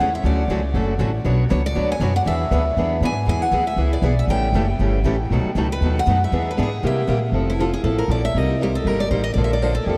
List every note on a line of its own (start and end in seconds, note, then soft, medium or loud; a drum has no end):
0.00 0.23 E2 medium
0.00 0.09 G#3 medium
0.00 0.10 C#4 medium
0.00 0.09 E4 medium
0.00 0.10 A4 loud
0.00 0.14 F#5 medium
0.15 0.26 E5 medium
0.24 0.47 D2 medium
0.24 0.42 D3 medium
0.24 0.42 F#3 medium
0.24 0.42 A3 medium
0.24 0.43 C#4 medium
0.24 0.43 F#4 medium
0.24 0.43 A4 medium
0.24 0.97 D5 medium
0.48 0.73 C#2 medium
0.48 0.60 D3 medium
0.48 0.60 F#3 medium
0.48 0.60 A3 medium
0.48 0.60 C#4 medium
0.48 0.60 F#4 medium
0.48 0.60 A4 medium
0.74 0.98 F#1 medium
0.74 0.92 D3 medium
0.74 0.93 F#3 medium
0.74 0.93 A3 medium
0.74 0.93 C#4 medium
0.74 0.93 F#4 medium
0.74 0.93 A4 medium
0.99 1.24 A1 medium
0.99 1.10 D3 medium
0.99 1.10 F#3 medium
0.99 1.10 A3 medium
0.99 1.10 C#4 medium
0.99 1.10 F#4 medium
0.99 1.10 A4 loud
1.25 1.50 B1 medium
1.25 1.43 B2 medium
1.25 1.43 F#3 medium
1.25 1.43 B3 medium
1.25 1.43 D4 medium
1.25 1.44 F#4 medium
1.25 1.43 C#5 medium
1.49 1.75 C#2 medium
1.49 1.60 B2 medium
1.49 1.60 F#3 medium
1.49 1.60 B3 medium
1.49 1.61 D4 medium
1.49 1.61 F#4 medium
1.49 1.61 C#5 medium
1.66 1.89 D5 medium
1.75 1.99 D2 medium
1.75 1.94 B2 medium
1.75 1.94 F#3 medium
1.75 1.94 B3 medium
1.75 1.94 D4 medium
1.75 1.94 F#4 medium
1.75 1.94 C#5 medium
1.92 2.16 G#5 loud
2.00 2.25 F#2 medium
2.00 2.11 B2 medium
2.00 2.11 F#3 medium
2.00 2.11 B3 medium
2.00 2.11 D4 medium
2.00 2.12 F#4 medium
2.00 2.12 C#5 medium
2.16 2.21 F#5 medium
2.26 2.50 E2 medium
2.26 2.45 E3 medium
2.26 2.45 B3 medium
2.26 2.45 D4 medium
2.26 2.45 G#4 medium
2.26 2.44 B4 medium
2.26 2.99 E5 medium
2.51 2.76 D2 medium
2.51 2.62 E3 medium
2.51 2.62 B3 medium
2.51 2.62 D4 medium
2.51 2.62 G#4 medium
2.51 2.63 B4 loud
2.77 3.00 E2 medium
2.77 2.96 E3 medium
2.77 2.96 B3 medium
2.77 2.96 D4 medium
2.77 2.96 G#4 medium
2.77 2.96 B4 medium
3.00 3.26 G#2 medium
3.00 3.12 E3 medium
3.00 3.13 B3 medium
3.00 3.13 D4 medium
3.00 3.13 G#4 medium
3.00 3.13 B4 medium
3.05 3.28 G#5 medium
3.26 3.51 E2 medium
3.26 3.46 E3 medium
3.26 3.45 G#3 medium
3.26 3.46 B3 medium
3.26 3.46 E4 medium
3.26 3.47 G#4 medium
3.26 3.42 G#5 medium
3.42 3.67 F#5 loud
3.52 3.76 D2 medium
3.52 3.63 E3 medium
3.52 3.62 G#3 medium
3.52 3.63 B3 medium
3.52 3.64 E4 medium
3.52 3.64 G#4 medium
3.67 3.91 E5 medium
3.76 4.01 C#2 medium
3.76 3.96 E3 medium
3.76 3.96 G#3 medium
3.76 3.96 B3 medium
3.76 3.97 E4 medium
3.76 3.96 G#4 medium
3.93 4.19 D5 medium
4.02 4.27 B1 medium
4.02 4.13 E3 medium
4.02 4.13 G#3 medium
4.02 4.14 B3 medium
4.02 4.14 E4 medium
4.02 4.14 G#4 medium
4.19 4.24 E5 medium
4.27 4.52 A1 medium
4.27 4.48 C#3 medium
4.27 4.48 E3 medium
4.27 4.47 G3 medium
4.27 4.48 A3 medium
4.27 4.48 C#4 medium
4.27 4.48 E4 medium
4.27 4.48 G4 medium
4.27 4.48 A4 medium
4.27 4.66 G5 medium
4.53 4.78 F#1 medium
4.53 4.65 C#3 medium
4.53 4.65 E3 medium
4.53 4.64 G3 medium
4.53 4.65 A3 medium
4.53 4.65 C#4 medium
4.53 4.65 E4 medium
4.53 4.66 G4 loud
4.53 4.65 A4 medium
4.79 5.03 G1 medium
4.79 4.98 C#3 medium
4.79 4.98 E3 medium
4.79 4.98 G3 medium
4.79 4.99 A3 medium
4.79 4.98 C#4 medium
4.79 4.98 E4 medium
4.79 4.99 G4 medium
4.79 4.98 A4 medium
5.04 5.29 A1 medium
5.04 5.15 C#3 medium
5.04 5.15 E3 medium
5.04 5.15 G3 medium
5.04 5.15 A3 medium
5.04 5.16 C#4 medium
5.04 5.16 E4 medium
5.04 5.15 G4 medium
5.04 5.16 A4 medium
5.30 5.43 B1 medium
5.30 5.49 B2 medium
5.30 5.50 D#3 medium
5.30 5.49 F#3 medium
5.30 5.50 A3 medium
5.30 5.50 B3 medium
5.30 5.49 D#4 medium
5.30 5.50 F#4 medium
5.30 5.50 A4 medium
5.44 muted upright bass stroke soft
5.55 5.80 C#2 medium
5.55 5.67 B2 medium
5.55 5.66 D#3 medium
5.55 5.67 F#3 medium
5.55 5.67 A3 medium
5.55 5.66 B3 medium
5.55 5.67 D#4 medium
5.55 5.67 F#4 loud
5.55 5.67 A4 medium
5.72 5.95 B4 loud
5.81 6.06 D#2 medium
5.81 6.01 B2 medium
5.81 6.00 D#3 medium
5.81 6.01 F#3 medium
5.81 6.01 A3 medium
5.81 6.00 B3 medium
5.81 6.00 A4 medium
5.85 6.01 D#4 medium
5.85 6.01 F#4 medium
5.99 6.21 F#5 loud
6.06 6.31 F#2 medium
6.06 6.18 B2 medium
6.06 6.16 D#3 medium
6.06 6.18 F#3 medium
6.06 6.18 A3 medium
6.06 6.17 B3 loud
6.06 6.18 D#4 medium
6.06 6.17 A4 loud
6.10 6.18 F#4 medium
6.24 6.49 E5 loud
6.32 6.57 E2 medium
6.32 6.50 E3 medium
6.32 6.51 B3 medium
6.32 6.51 D4 medium
6.32 6.51 G#4 medium
6.32 6.51 B4 medium
6.51 6.63 B4 medium
6.57 6.82 G#2 medium
6.57 6.67 E3 medium
6.57 6.67 B3 medium
6.57 6.68 D4 medium
6.57 6.68 G#4 medium
6.57 6.69 B4 medium
6.63 6.86 G#4 medium
6.83 7.07 C3 medium
6.83 7.01 C3 medium
6.83 7.01 G3 medium
6.83 7.01 A#3 medium
6.83 7.02 E4 medium
6.83 7.02 G4 medium
6.83 7.21 E5 medium
7.07 7.31 A#2 medium
7.07 7.18 C3 medium
7.07 7.18 G3 medium
7.07 7.18 A#3 medium
7.07 7.18 E4 medium
7.07 7.18 G4 medium
7.32 7.73 F1 medium
7.32 7.51 F3 medium
7.32 7.52 C4 medium
7.32 7.52 E4 medium
7.32 7.52 A4 medium
7.50 7.60 E4 medium
7.59 7.69 F3 medium
7.59 7.69 C4 medium
7.59 7.70 E4 medium
7.59 7.73 F4 medium
7.59 7.70 A4 medium
7.73 7.83 G#4 medium
7.84 8.06 A1 medium
7.84 8.02 F3 medium
7.84 8.03 C4 medium
7.84 8.03 E4 medium
7.84 7.98 A4 medium
7.84 8.03 A4 medium
7.98 8.10 A#4 medium
8.08 8.30 A#1 medium
8.08 8.19 F3 medium
8.08 8.20 C4 medium
8.08 8.20 E4 medium
8.08 8.20 A4 medium
8.08 8.24 D5 medium
8.25 8.38 E5 loud
8.35 8.75 C2 medium
8.35 8.53 C3 medium
8.35 8.53 G3 medium
8.35 8.54 A#3 medium
8.35 8.54 D#4 medium
8.35 8.54 G4 medium
8.35 8.62 D#5 medium
8.61 8.71 C3 medium
8.61 8.71 G3 medium
8.61 8.71 A#3 medium
8.61 8.71 D#4 medium
8.61 8.71 G4 medium
8.61 8.75 C5 medium
8.75 8.87 A4 medium
8.85 9.07 G1 medium
8.85 9.04 C3 medium
8.85 9.04 G3 medium
8.85 9.04 A#3 medium
8.85 9.04 D#4 medium
8.85 9.05 G4 medium
8.85 9.00 A#4 medium
9.00 9.10 D5 loud
9.11 9.32 A1 medium
9.11 9.21 C3 medium
9.11 9.21 G3 medium
9.11 9.22 A#3 medium
9.11 9.22 D#4 medium
9.11 9.22 G4 medium
9.11 9.23 C5 medium
9.24 9.33 D#5 loud
9.34 9.77 A#1 medium
9.34 9.55 D3 medium
9.34 9.54 F3 medium
9.34 9.55 D4 medium
9.34 9.43 D5 medium
9.38 9.55 A#3 medium
9.38 9.55 A4 medium
9.44 9.53 E5 medium
9.53 9.62 D5 medium
9.61 9.72 D3 medium
9.61 9.72 F3 medium
9.61 9.72 A#3 medium
9.61 9.72 D4 medium
9.61 9.73 A4 medium
9.61 9.75 C5 medium
9.75 9.87 A4 medium
9.86 9.97 F2 medium
9.86 9.97 D3 medium
9.86 9.97 F3 medium
9.86 9.97 A#3 medium
9.86 9.97 D4 medium
9.86 9.97 G4 medium
9.86 9.97 A4 medium